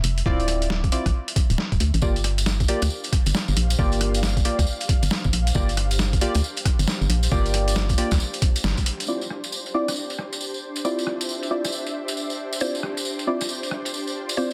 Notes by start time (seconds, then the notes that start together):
Already playing: E5
0.04 F1, closed hi-hat
0.18 closed hi-hat
0.26 D1 C4 E4 F4 D5, kick
0.40 closed hi-hat
0.48 cross-stick, closed hi-hat
0.62 closed hi-hat
0.70 snare
0.84 kick, closed hi-hat
0.92 C4 E4 F4 D5, closed hi-hat
1.06 A1, kick, cross-stick, closed hi-hat
1.28 closed hi-hat
1.36 kick, closed hi-hat
1.50 D1, closed hi-hat
1.58 snare
1.72 D1, kick, closed hi-hat
1.80 D2, closed hi-hat
1.94 A1, closed hi-hat
2.02 G1 A#3 D4 F4 G4 D5, kick, tambourine
2.16 G4, closed hi-hat, tambourine
2.24 cross-stick, closed hi-hat
2.38 closed hi-hat, tambourine
2.46 C5 F5, snare, tambourine
2.60 kick, closed hi-hat, tambourine
2.68 A#3 F4 G4 D5, closed hi-hat
2.82 D2, cross-stick, closed hi-hat, tambourine
2.90 tambourine
3.04 closed hi-hat, tambourine
3.13 kick, cross-stick, closed hi-hat
3.26 G1, closed hi-hat, tambourine
3.35 snare, tambourine
3.48 G1, tambourine
3.57 A#1, closed hi-hat
3.70 closed hi-hat, tambourine
3.79 G1 A#3 F4 G4 D5, kick
3.92 closed hi-hat, tambourine
4.01 cross-stick, closed hi-hat
4.14 closed hi-hat, tambourine
4.23 snare, tambourine
4.37 kick, closed hi-hat, tambourine
4.45 A#3 F4 G4 D5, closed hi-hat
4.59 D2, kick, cross-stick, closed hi-hat, tambourine
4.67 tambourine
4.80 closed hi-hat, tambourine
4.89 kick, closed hi-hat
5.03 G1, closed hi-hat, tambourine
5.10 snare, tambourine
5.24 G1, kick, tambourine
5.33 A#1, closed hi-hat
5.47 closed hi-hat, tambourine
5.55 G1 A#3 F4 G4 D5, kick, tambourine
5.69 closed hi-hat, tambourine
5.77 cross-stick, closed hi-hat
5.91 closed hi-hat, tambourine
5.99 snare, tambourine
6.13 kick, closed hi-hat, tambourine
6.21 A#3 F4 G4 D5, closed hi-hat
6.34 D2, cross-stick, closed hi-hat, tambourine
6.44 tambourine
6.57 closed hi-hat, tambourine
6.65 kick, cross-stick, closed hi-hat
6.79 G1, closed hi-hat, tambourine
6.88 snare, tambourine
7.01 G1, tambourine
7.09 A#1, closed hi-hat
7.23 closed hi-hat, tambourine
7.31 G1 A#3 F4 G4 D5, kick, tambourine
7.46 closed hi-hat, tambourine
7.54 cross-stick, closed hi-hat
7.68 closed hi-hat, tambourine
7.76 snare, tambourine
7.89 kick, closed hi-hat, tambourine
7.98 A#3 F4 G4 D5, closed hi-hat
8.11 D2, kick, cross-stick, snare, closed hi-hat, tambourine
8.20 tambourine
8.33 closed hi-hat, tambourine
8.42 kick, closed hi-hat
8.56 closed hi-hat, tambourine
8.64 G1, snare, tambourine
8.77 kick, closed hi-hat, tambourine
8.86 closed hi-hat
9.00 closed hi-hat, tambourine
9.07 C4 E4 F4 D5, tambourine
9.21 closed hi-hat, tambourine
9.30 cross-stick
9.44 closed hi-hat, tambourine
9.52 tambourine
9.66 closed hi-hat, tambourine
9.74 C4 E4 F4 D5
9.88 cross-stick, closed hi-hat, tambourine
9.96 tambourine
10.10 closed hi-hat, tambourine
10.19 cross-stick
10.33 closed hi-hat, tambourine
10.41 E5, tambourine
10.54 tambourine
10.76 closed hi-hat, tambourine
10.85 C4 E4 F4 D5, tambourine
10.99 closed hi-hat, tambourine
11.07 cross-stick
11.21 closed hi-hat, tambourine
11.29 tambourine
11.43 closed hi-hat, tambourine
11.51 C4 E4 F4 D5
11.64 cross-stick, closed hi-hat, tambourine
11.72 tambourine
11.86 closed hi-hat, tambourine
12.08 closed hi-hat, tambourine
12.17 tambourine
12.30 tambourine
12.53 closed hi-hat, tambourine
12.60 C4 E4 F4 C5 D5, tambourine
12.75 closed hi-hat, tambourine
12.83 cross-stick
12.97 closed hi-hat, tambourine
13.05 tambourine
13.19 closed hi-hat, tambourine
13.27 C4 E4 F4 D5
13.41 cross-stick, closed hi-hat, tambourine
13.49 tambourine
13.58 F4
13.63 closed hi-hat, tambourine
13.71 cross-stick
13.85 closed hi-hat, tambourine
13.94 tambourine
14.07 tambourine
14.29 closed hi-hat, tambourine
14.37 C4 E4 F4 C5 D5